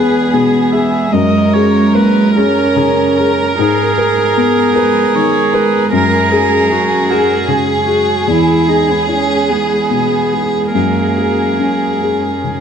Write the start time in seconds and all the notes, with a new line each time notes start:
Already playing: E2 G#3 B3 G#4 B4
0.33 B2 G#4
0.72 G#4 E5
1.12 F#2 G#3 C#4 A#4 D#5 A#5
1.54 G#4 C#5
1.95 A#3 B4
2.36 C#4 G#4 A#4
2.76 C#3 G#4
3.18 G#4 A#4
3.58 G#2 G#3 B3 G#4
3.98 A#4
4.37 B3
4.75 A#4 B4
5.15 D#3 C#5
5.54 A#4 B4
5.93 F#2 C#4 G#4 A#4
6.31 G#4
6.70 C#4 F#4
7.10 F#4 G#4 A#4
7.48 C#3 G#4
7.87 F#4 G#4
8.27 E2 G#3 B3 E4 G#4
8.68 D#4 G#4
8.91 B3
9.08 C#4 E4
9.49 B3 G#4
9.91 B2
10.32 G#4
10.73 F#2 A#3 C#4 G#4 A#4
11.18 G#4
11.59 C#4
12.02 G#4
12.44 C#3